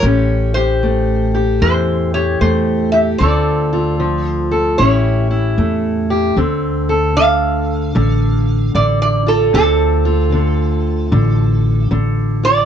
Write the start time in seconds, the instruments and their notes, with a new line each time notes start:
Already playing: resonator guitar played with a steel bar C#5
0.03 upright bass A1, steel-string acoustic guitar A2 C#4 G4
0.54 steel-string acoustic guitar G4, resonator guitar played with a steel bar C5
0.83 steel-string acoustic guitar A3
1.34 steel-string acoustic guitar G4
1.62 upright bass E2, steel-string acoustic guitar E3, resonator guitar played with a steel bar C5
2.14 steel-string acoustic guitar G4, resonator guitar played with a steel bar C#5
2.41 upright bass E2, steel-string acoustic guitar A3, resonator guitar played with a steel bar C5
2.92 steel-string acoustic guitar G4, resonator guitar played with a steel bar E5
3.18 upright bass D2, steel-string acoustic guitar D3 C4 F4 A4, resonator guitar played with a steel bar D5
3.73 steel-string acoustic guitar F4
4.00 steel-string acoustic guitar F3
4.27 resonator guitar played with a steel bar C5
4.51 steel-string acoustic guitar A4
4.78 upright bass A1, steel-string acoustic guitar A2 C#4 E4 G4, resonator guitar played with a steel bar C#5
5.31 steel-string acoustic guitar E4
5.58 upright bass E2, steel-string acoustic guitar A3
6.10 steel-string acoustic guitar G4
6.37 upright bass D2, steel-string acoustic guitar D3 C4
6.89 steel-string acoustic guitar A4
7.16 steel-string acoustic guitar D3, resonator guitar played with a steel bar F5
7.95 upright bass A1, steel-string acoustic guitar D3
8.75 upright bass A1, steel-string acoustic guitar D3, resonator guitar played with a steel bar D5
9.02 resonator guitar played with a steel bar D5
9.27 steel-string acoustic guitar F4, resonator guitar played with a steel bar A4
9.54 upright bass D2, steel-string acoustic guitar D3 C4, resonator guitar played with a steel bar A4
10.05 steel-string acoustic guitar F4
10.32 steel-string acoustic guitar D3
11.12 upright bass A1, steel-string acoustic guitar D3
11.91 upright bass A1, steel-string acoustic guitar D3
12.43 steel-string acoustic guitar F4, resonator guitar played with a steel bar D5